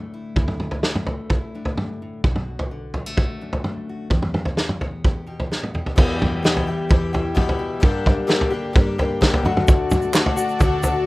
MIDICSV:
0, 0, Header, 1, 6, 480
1, 0, Start_track
1, 0, Tempo, 465839
1, 373, Time_signature, 4, 2, 24, 8
1, 11398, End_track
2, 0, Start_track
2, 0, Title_t, "String section"
2, 0, Program_c, 0, 48
2, 9979, Note_on_c, 0, 74, 69
2, 9980, Note_on_c, 0, 69, 69
2, 9980, Note_on_c, 0, 81, 80
2, 9982, Note_on_c, 0, 66, 76
2, 11398, Note_off_c, 0, 66, 0
2, 11398, Note_off_c, 0, 69, 0
2, 11398, Note_off_c, 0, 74, 0
2, 11398, Note_off_c, 0, 81, 0
2, 11398, End_track
3, 0, Start_track
3, 0, Title_t, "Twelve-string acoustic guitar"
3, 0, Program_c, 1, 25
3, 6140, Note_on_c, 1, 40, 77
3, 6149, Note_on_c, 1, 47, 66
3, 6155, Note_on_c, 1, 52, 69
3, 6156, Note_on_c, 1, 55, 79
3, 6161, Note_on_c, 1, 64, 71
3, 6167, Note_on_c, 1, 67, 81
3, 6626, Note_off_c, 1, 40, 0
3, 6631, Note_off_c, 1, 47, 0
3, 6634, Note_off_c, 1, 52, 0
3, 6637, Note_off_c, 1, 64, 0
3, 6639, Note_on_c, 1, 40, 72
3, 6643, Note_on_c, 1, 47, 75
3, 6645, Note_on_c, 1, 52, 72
3, 6649, Note_off_c, 1, 55, 0
3, 6653, Note_on_c, 1, 55, 69
3, 6655, Note_on_c, 1, 64, 74
3, 6656, Note_off_c, 1, 67, 0
3, 6661, Note_on_c, 1, 67, 79
3, 6861, Note_off_c, 1, 67, 0
3, 6872, Note_off_c, 1, 64, 0
3, 6873, Note_on_c, 1, 67, 55
3, 6875, Note_off_c, 1, 40, 0
3, 6877, Note_off_c, 1, 47, 0
3, 6878, Note_off_c, 1, 52, 0
3, 6883, Note_off_c, 1, 55, 0
3, 6884, Note_on_c, 1, 64, 49
3, 6897, Note_on_c, 1, 55, 44
3, 6904, Note_on_c, 1, 52, 40
3, 7089, Note_off_c, 1, 52, 0
3, 7101, Note_off_c, 1, 55, 0
3, 7102, Note_on_c, 1, 52, 61
3, 7109, Note_off_c, 1, 64, 0
3, 7112, Note_off_c, 1, 67, 0
3, 7114, Note_on_c, 1, 55, 64
3, 7122, Note_on_c, 1, 64, 66
3, 7131, Note_on_c, 1, 67, 68
3, 7333, Note_off_c, 1, 67, 0
3, 7341, Note_off_c, 1, 64, 0
3, 7345, Note_on_c, 1, 67, 53
3, 7346, Note_off_c, 1, 52, 0
3, 7352, Note_off_c, 1, 55, 0
3, 7354, Note_on_c, 1, 64, 54
3, 7364, Note_on_c, 1, 55, 47
3, 7372, Note_on_c, 1, 52, 42
3, 7566, Note_off_c, 1, 52, 0
3, 7570, Note_off_c, 1, 55, 0
3, 7570, Note_on_c, 1, 40, 73
3, 7573, Note_on_c, 1, 47, 79
3, 7575, Note_off_c, 1, 64, 0
3, 7577, Note_off_c, 1, 67, 0
3, 7579, Note_on_c, 1, 52, 77
3, 7582, Note_on_c, 1, 55, 84
3, 7588, Note_on_c, 1, 64, 86
3, 7589, Note_on_c, 1, 67, 80
3, 8034, Note_off_c, 1, 40, 0
3, 8038, Note_on_c, 1, 43, 74
3, 8041, Note_off_c, 1, 55, 0
3, 8043, Note_off_c, 1, 47, 0
3, 8047, Note_on_c, 1, 50, 81
3, 8049, Note_off_c, 1, 52, 0
3, 8050, Note_off_c, 1, 67, 0
3, 8053, Note_on_c, 1, 55, 71
3, 8058, Note_on_c, 1, 58, 74
3, 8059, Note_off_c, 1, 64, 0
3, 8062, Note_on_c, 1, 67, 77
3, 8063, Note_on_c, 1, 62, 84
3, 8509, Note_off_c, 1, 43, 0
3, 8516, Note_off_c, 1, 55, 0
3, 8517, Note_off_c, 1, 50, 0
3, 8521, Note_on_c, 1, 43, 74
3, 8524, Note_off_c, 1, 58, 0
3, 8529, Note_on_c, 1, 50, 75
3, 8529, Note_on_c, 1, 55, 73
3, 8531, Note_off_c, 1, 67, 0
3, 8536, Note_off_c, 1, 62, 0
3, 8536, Note_on_c, 1, 58, 77
3, 8541, Note_on_c, 1, 62, 76
3, 8543, Note_on_c, 1, 67, 78
3, 8749, Note_off_c, 1, 67, 0
3, 8762, Note_on_c, 1, 67, 57
3, 8764, Note_off_c, 1, 62, 0
3, 8772, Note_off_c, 1, 43, 0
3, 8774, Note_off_c, 1, 58, 0
3, 8776, Note_off_c, 1, 50, 0
3, 8776, Note_off_c, 1, 55, 0
3, 8777, Note_on_c, 1, 62, 50
3, 8786, Note_on_c, 1, 58, 48
3, 8794, Note_on_c, 1, 55, 46
3, 8984, Note_off_c, 1, 55, 0
3, 8997, Note_off_c, 1, 58, 0
3, 8997, Note_on_c, 1, 55, 62
3, 9009, Note_on_c, 1, 58, 65
3, 9011, Note_off_c, 1, 62, 0
3, 9012, Note_off_c, 1, 67, 0
3, 9023, Note_on_c, 1, 62, 65
3, 9032, Note_on_c, 1, 67, 71
3, 9244, Note_off_c, 1, 67, 0
3, 9249, Note_off_c, 1, 55, 0
3, 9252, Note_off_c, 1, 62, 0
3, 9255, Note_off_c, 1, 58, 0
3, 9256, Note_on_c, 1, 67, 52
3, 9265, Note_on_c, 1, 62, 49
3, 9273, Note_on_c, 1, 58, 51
3, 9281, Note_on_c, 1, 55, 48
3, 9488, Note_on_c, 1, 43, 89
3, 9491, Note_off_c, 1, 55, 0
3, 9495, Note_off_c, 1, 62, 0
3, 9497, Note_off_c, 1, 58, 0
3, 9497, Note_off_c, 1, 67, 0
3, 9498, Note_on_c, 1, 50, 79
3, 9503, Note_on_c, 1, 55, 83
3, 9508, Note_on_c, 1, 62, 90
3, 9509, Note_on_c, 1, 58, 83
3, 9517, Note_on_c, 1, 67, 87
3, 9727, Note_off_c, 1, 62, 0
3, 9730, Note_off_c, 1, 67, 0
3, 9733, Note_off_c, 1, 43, 0
3, 9734, Note_on_c, 1, 66, 63
3, 9738, Note_off_c, 1, 50, 0
3, 9740, Note_off_c, 1, 55, 0
3, 9740, Note_on_c, 1, 62, 64
3, 9742, Note_off_c, 1, 58, 0
3, 9747, Note_on_c, 1, 57, 57
3, 9754, Note_on_c, 1, 50, 54
3, 10429, Note_off_c, 1, 50, 0
3, 10441, Note_on_c, 1, 50, 73
3, 10442, Note_off_c, 1, 57, 0
3, 10443, Note_off_c, 1, 62, 0
3, 10446, Note_on_c, 1, 57, 76
3, 10452, Note_off_c, 1, 66, 0
3, 10455, Note_on_c, 1, 62, 85
3, 10463, Note_on_c, 1, 66, 82
3, 10664, Note_off_c, 1, 66, 0
3, 10676, Note_on_c, 1, 66, 57
3, 10679, Note_off_c, 1, 62, 0
3, 10686, Note_off_c, 1, 50, 0
3, 10688, Note_off_c, 1, 57, 0
3, 10691, Note_on_c, 1, 62, 56
3, 10706, Note_on_c, 1, 57, 47
3, 10911, Note_off_c, 1, 57, 0
3, 10913, Note_on_c, 1, 50, 64
3, 10916, Note_off_c, 1, 62, 0
3, 10923, Note_off_c, 1, 66, 0
3, 10924, Note_on_c, 1, 57, 68
3, 10929, Note_on_c, 1, 62, 71
3, 10940, Note_on_c, 1, 66, 72
3, 11141, Note_off_c, 1, 66, 0
3, 11153, Note_on_c, 1, 66, 57
3, 11156, Note_off_c, 1, 62, 0
3, 11160, Note_off_c, 1, 50, 0
3, 11165, Note_off_c, 1, 57, 0
3, 11168, Note_on_c, 1, 62, 49
3, 11180, Note_on_c, 1, 57, 45
3, 11394, Note_off_c, 1, 57, 0
3, 11398, Note_off_c, 1, 62, 0
3, 11398, Note_off_c, 1, 66, 0
3, 11398, End_track
4, 0, Start_track
4, 0, Title_t, "Steel-string acoustic guitar"
4, 0, Program_c, 2, 25
4, 0, Note_on_c, 2, 38, 60
4, 0, Note_on_c, 2, 45, 46
4, 0, Note_on_c, 2, 50, 51
4, 0, Note_on_c, 2, 57, 48
4, 0, Note_on_c, 2, 62, 46
4, 0, Note_on_c, 2, 64, 47
4, 128, Note_off_c, 2, 64, 0
4, 141, Note_on_c, 2, 64, 50
4, 349, Note_off_c, 2, 64, 0
4, 370, Note_off_c, 2, 38, 0
4, 377, Note_off_c, 2, 45, 0
4, 383, Note_on_c, 2, 38, 60
4, 390, Note_on_c, 2, 64, 57
4, 421, Note_off_c, 2, 62, 0
4, 850, Note_off_c, 2, 50, 0
4, 862, Note_on_c, 2, 50, 48
4, 1113, Note_off_c, 2, 57, 0
4, 1117, Note_on_c, 2, 57, 47
4, 1341, Note_off_c, 2, 64, 0
4, 1353, Note_on_c, 2, 64, 51
4, 1593, Note_on_c, 2, 45, 49
4, 1598, Note_on_c, 2, 62, 46
4, 1821, Note_off_c, 2, 38, 0
4, 1825, Note_on_c, 2, 43, 56
4, 2064, Note_off_c, 2, 43, 0
4, 2069, Note_off_c, 2, 45, 0
4, 2082, Note_on_c, 2, 45, 53
4, 2282, Note_off_c, 2, 64, 0
4, 2284, Note_off_c, 2, 62, 0
4, 2285, Note_off_c, 2, 57, 0
4, 2305, Note_off_c, 2, 45, 0
4, 2309, Note_on_c, 2, 47, 63
4, 2311, Note_on_c, 2, 66, 57
4, 2782, Note_off_c, 2, 50, 0
4, 2789, Note_off_c, 2, 47, 0
4, 2795, Note_on_c, 2, 50, 53
4, 3034, Note_on_c, 2, 54, 52
4, 3154, Note_off_c, 2, 54, 0
4, 3154, Note_on_c, 2, 57, 40
4, 3271, Note_off_c, 2, 66, 0
4, 3287, Note_on_c, 2, 66, 51
4, 3516, Note_on_c, 2, 42, 55
4, 3522, Note_on_c, 2, 62, 49
4, 3753, Note_off_c, 2, 57, 0
4, 3764, Note_on_c, 2, 57, 52
4, 4000, Note_off_c, 2, 66, 0
4, 4012, Note_on_c, 2, 66, 50
4, 4206, Note_off_c, 2, 42, 0
4, 4209, Note_off_c, 2, 62, 0
4, 4210, Note_off_c, 2, 57, 0
4, 4213, Note_off_c, 2, 66, 0
4, 4228, Note_on_c, 2, 40, 64
4, 4236, Note_off_c, 2, 50, 0
4, 4236, Note_on_c, 2, 67, 57
4, 4711, Note_on_c, 2, 52, 53
4, 4960, Note_on_c, 2, 59, 50
4, 5186, Note_off_c, 2, 67, 0
4, 5199, Note_on_c, 2, 67, 47
4, 5418, Note_off_c, 2, 67, 0
4, 5425, Note_on_c, 2, 47, 51
4, 5433, Note_on_c, 2, 67, 54
4, 5670, Note_off_c, 2, 59, 0
4, 5682, Note_on_c, 2, 59, 49
4, 5903, Note_off_c, 2, 67, 0
4, 5916, Note_on_c, 2, 67, 49
4, 6122, Note_off_c, 2, 47, 0
4, 6123, Note_off_c, 2, 40, 0
4, 6124, Note_off_c, 2, 52, 0
4, 6126, Note_off_c, 2, 67, 0
4, 6129, Note_off_c, 2, 59, 0
4, 6135, Note_on_c, 2, 40, 65
4, 6143, Note_on_c, 2, 52, 55
4, 6155, Note_on_c, 2, 59, 56
4, 6161, Note_on_c, 2, 67, 67
4, 6377, Note_off_c, 2, 67, 0
4, 6381, Note_on_c, 2, 67, 55
4, 6610, Note_off_c, 2, 59, 0
4, 6622, Note_on_c, 2, 59, 56
4, 6846, Note_off_c, 2, 52, 0
4, 6858, Note_on_c, 2, 52, 59
4, 7574, Note_on_c, 2, 47, 63
4, 7807, Note_off_c, 2, 67, 0
4, 7820, Note_on_c, 2, 67, 59
4, 8031, Note_off_c, 2, 40, 0
4, 8031, Note_off_c, 2, 47, 0
4, 8033, Note_off_c, 2, 52, 0
4, 8035, Note_off_c, 2, 59, 0
4, 8035, Note_off_c, 2, 67, 0
4, 8054, Note_on_c, 2, 43, 71
4, 8302, Note_on_c, 2, 62, 53
4, 8528, Note_on_c, 2, 58, 54
4, 8763, Note_on_c, 2, 50, 61
4, 9473, Note_off_c, 2, 50, 0
4, 9486, Note_on_c, 2, 50, 62
4, 9701, Note_off_c, 2, 58, 0
4, 9703, Note_off_c, 2, 43, 0
4, 9703, Note_off_c, 2, 50, 0
4, 9708, Note_off_c, 2, 62, 0
4, 9718, Note_on_c, 2, 38, 69
4, 11398, Note_off_c, 2, 38, 0
4, 11398, End_track
5, 0, Start_track
5, 0, Title_t, "Fingered electric bass"
5, 0, Program_c, 3, 33
5, 0, Note_on_c, 3, 38, 63
5, 333, Note_off_c, 3, 38, 0
5, 371, Note_on_c, 3, 38, 64
5, 2264, Note_off_c, 3, 38, 0
5, 2306, Note_on_c, 3, 35, 66
5, 4194, Note_off_c, 3, 35, 0
5, 4227, Note_on_c, 3, 40, 68
5, 6113, Note_off_c, 3, 40, 0
5, 6157, Note_on_c, 3, 40, 86
5, 6961, Note_off_c, 3, 40, 0
5, 7113, Note_on_c, 3, 40, 84
5, 7916, Note_off_c, 3, 40, 0
5, 8067, Note_on_c, 3, 43, 90
5, 8869, Note_off_c, 3, 43, 0
5, 9018, Note_on_c, 3, 43, 82
5, 9621, Note_off_c, 3, 43, 0
5, 9720, Note_on_c, 3, 38, 91
5, 10529, Note_off_c, 3, 38, 0
5, 10926, Note_on_c, 3, 38, 86
5, 11398, Note_off_c, 3, 38, 0
5, 11398, End_track
6, 0, Start_track
6, 0, Title_t, "Drums"
6, 371, Note_on_c, 9, 43, 63
6, 375, Note_on_c, 9, 36, 80
6, 474, Note_off_c, 9, 43, 0
6, 478, Note_off_c, 9, 36, 0
6, 493, Note_on_c, 9, 47, 59
6, 596, Note_off_c, 9, 47, 0
6, 616, Note_on_c, 9, 47, 59
6, 719, Note_off_c, 9, 47, 0
6, 734, Note_on_c, 9, 43, 62
6, 837, Note_off_c, 9, 43, 0
6, 856, Note_on_c, 9, 38, 59
6, 959, Note_off_c, 9, 38, 0
6, 983, Note_on_c, 9, 47, 62
6, 1086, Note_off_c, 9, 47, 0
6, 1099, Note_on_c, 9, 43, 69
6, 1202, Note_off_c, 9, 43, 0
6, 1337, Note_on_c, 9, 43, 66
6, 1341, Note_on_c, 9, 36, 82
6, 1440, Note_off_c, 9, 43, 0
6, 1444, Note_off_c, 9, 36, 0
6, 1703, Note_on_c, 9, 43, 70
6, 1806, Note_off_c, 9, 43, 0
6, 1829, Note_on_c, 9, 47, 61
6, 1932, Note_off_c, 9, 47, 0
6, 2308, Note_on_c, 9, 43, 66
6, 2309, Note_on_c, 9, 36, 84
6, 2411, Note_off_c, 9, 43, 0
6, 2412, Note_off_c, 9, 36, 0
6, 2428, Note_on_c, 9, 47, 58
6, 2531, Note_off_c, 9, 47, 0
6, 2671, Note_on_c, 9, 43, 69
6, 2774, Note_off_c, 9, 43, 0
6, 3028, Note_on_c, 9, 43, 65
6, 3131, Note_off_c, 9, 43, 0
6, 3268, Note_on_c, 9, 43, 69
6, 3272, Note_on_c, 9, 36, 90
6, 3371, Note_off_c, 9, 43, 0
6, 3375, Note_off_c, 9, 36, 0
6, 3635, Note_on_c, 9, 43, 72
6, 3738, Note_off_c, 9, 43, 0
6, 3753, Note_on_c, 9, 47, 58
6, 3856, Note_off_c, 9, 47, 0
6, 4227, Note_on_c, 9, 43, 64
6, 4233, Note_on_c, 9, 36, 86
6, 4330, Note_off_c, 9, 43, 0
6, 4336, Note_off_c, 9, 36, 0
6, 4352, Note_on_c, 9, 47, 62
6, 4455, Note_off_c, 9, 47, 0
6, 4473, Note_on_c, 9, 47, 60
6, 4576, Note_off_c, 9, 47, 0
6, 4589, Note_on_c, 9, 43, 67
6, 4693, Note_off_c, 9, 43, 0
6, 4711, Note_on_c, 9, 38, 61
6, 4814, Note_off_c, 9, 38, 0
6, 4833, Note_on_c, 9, 47, 59
6, 4936, Note_off_c, 9, 47, 0
6, 4958, Note_on_c, 9, 43, 69
6, 5061, Note_off_c, 9, 43, 0
6, 5198, Note_on_c, 9, 36, 84
6, 5199, Note_on_c, 9, 43, 66
6, 5301, Note_off_c, 9, 36, 0
6, 5302, Note_off_c, 9, 43, 0
6, 5561, Note_on_c, 9, 43, 66
6, 5664, Note_off_c, 9, 43, 0
6, 5684, Note_on_c, 9, 38, 41
6, 5787, Note_off_c, 9, 38, 0
6, 5806, Note_on_c, 9, 48, 46
6, 5909, Note_off_c, 9, 48, 0
6, 5923, Note_on_c, 9, 45, 60
6, 6026, Note_off_c, 9, 45, 0
6, 6042, Note_on_c, 9, 43, 61
6, 6145, Note_off_c, 9, 43, 0
6, 6160, Note_on_c, 9, 36, 92
6, 6163, Note_on_c, 9, 43, 76
6, 6163, Note_on_c, 9, 49, 82
6, 6263, Note_off_c, 9, 36, 0
6, 6266, Note_off_c, 9, 43, 0
6, 6266, Note_off_c, 9, 49, 0
6, 6407, Note_on_c, 9, 43, 76
6, 6407, Note_on_c, 9, 47, 70
6, 6510, Note_off_c, 9, 43, 0
6, 6510, Note_off_c, 9, 47, 0
6, 6647, Note_on_c, 9, 38, 67
6, 6750, Note_off_c, 9, 38, 0
6, 6765, Note_on_c, 9, 43, 74
6, 6869, Note_off_c, 9, 43, 0
6, 7116, Note_on_c, 9, 36, 95
6, 7120, Note_on_c, 9, 43, 79
6, 7219, Note_off_c, 9, 36, 0
6, 7223, Note_off_c, 9, 43, 0
6, 7361, Note_on_c, 9, 43, 76
6, 7464, Note_off_c, 9, 43, 0
6, 7594, Note_on_c, 9, 36, 61
6, 7599, Note_on_c, 9, 47, 65
6, 7697, Note_off_c, 9, 36, 0
6, 7702, Note_off_c, 9, 47, 0
6, 7718, Note_on_c, 9, 43, 77
6, 7821, Note_off_c, 9, 43, 0
6, 8068, Note_on_c, 9, 36, 93
6, 8070, Note_on_c, 9, 43, 74
6, 8171, Note_off_c, 9, 36, 0
6, 8173, Note_off_c, 9, 43, 0
6, 8307, Note_on_c, 9, 36, 63
6, 8312, Note_on_c, 9, 43, 76
6, 8312, Note_on_c, 9, 47, 68
6, 8410, Note_off_c, 9, 36, 0
6, 8415, Note_off_c, 9, 43, 0
6, 8415, Note_off_c, 9, 47, 0
6, 8548, Note_on_c, 9, 38, 70
6, 8651, Note_off_c, 9, 38, 0
6, 8667, Note_on_c, 9, 43, 76
6, 8770, Note_off_c, 9, 43, 0
6, 9022, Note_on_c, 9, 36, 101
6, 9024, Note_on_c, 9, 43, 81
6, 9125, Note_off_c, 9, 36, 0
6, 9127, Note_off_c, 9, 43, 0
6, 9265, Note_on_c, 9, 43, 79
6, 9368, Note_off_c, 9, 43, 0
6, 9500, Note_on_c, 9, 36, 63
6, 9503, Note_on_c, 9, 38, 69
6, 9603, Note_off_c, 9, 36, 0
6, 9606, Note_off_c, 9, 38, 0
6, 9621, Note_on_c, 9, 43, 79
6, 9724, Note_off_c, 9, 43, 0
6, 9744, Note_on_c, 9, 47, 70
6, 9847, Note_off_c, 9, 47, 0
6, 9860, Note_on_c, 9, 47, 70
6, 9963, Note_off_c, 9, 47, 0
6, 9969, Note_on_c, 9, 82, 56
6, 9978, Note_on_c, 9, 36, 99
6, 9981, Note_on_c, 9, 43, 76
6, 10072, Note_off_c, 9, 82, 0
6, 10081, Note_off_c, 9, 36, 0
6, 10084, Note_off_c, 9, 43, 0
6, 10207, Note_on_c, 9, 82, 68
6, 10216, Note_on_c, 9, 43, 77
6, 10216, Note_on_c, 9, 47, 76
6, 10310, Note_off_c, 9, 82, 0
6, 10319, Note_off_c, 9, 43, 0
6, 10319, Note_off_c, 9, 47, 0
6, 10322, Note_on_c, 9, 82, 20
6, 10425, Note_off_c, 9, 82, 0
6, 10443, Note_on_c, 9, 82, 54
6, 10451, Note_on_c, 9, 39, 83
6, 10455, Note_on_c, 9, 38, 70
6, 10546, Note_off_c, 9, 82, 0
6, 10554, Note_off_c, 9, 39, 0
6, 10558, Note_off_c, 9, 38, 0
6, 10573, Note_on_c, 9, 43, 78
6, 10676, Note_off_c, 9, 43, 0
6, 10689, Note_on_c, 9, 82, 76
6, 10793, Note_off_c, 9, 82, 0
6, 10807, Note_on_c, 9, 82, 23
6, 10910, Note_off_c, 9, 82, 0
6, 10926, Note_on_c, 9, 43, 83
6, 10926, Note_on_c, 9, 82, 60
6, 10929, Note_on_c, 9, 36, 98
6, 11029, Note_off_c, 9, 43, 0
6, 11029, Note_off_c, 9, 82, 0
6, 11032, Note_off_c, 9, 36, 0
6, 11162, Note_on_c, 9, 82, 83
6, 11164, Note_on_c, 9, 43, 79
6, 11265, Note_off_c, 9, 82, 0
6, 11267, Note_off_c, 9, 43, 0
6, 11398, End_track
0, 0, End_of_file